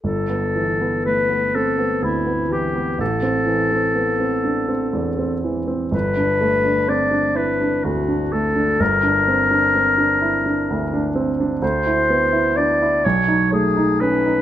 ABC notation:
X:1
M:6/8
L:1/16
Q:3/8=42
K:G
V:1 name="Clarinet"
A4 B2 A2 E2 G2 | A8- A2 z2 | B4 d2 B2 F2 A2 | _B8- B2 z2 |
c4 d2 ^c2 _A2 B2 |]
V:2 name="Grand piano"
G,,, B, E, B, A, B, C B, D,, B, E, B, | A,,, C E, C B, C D C E,, C E, C | G,,, D A, D C D E D D,, D A, D | G,,, D C D C D E D D,, D C D |
D,, E B, E D E B,,, ^D A, D ^C D |]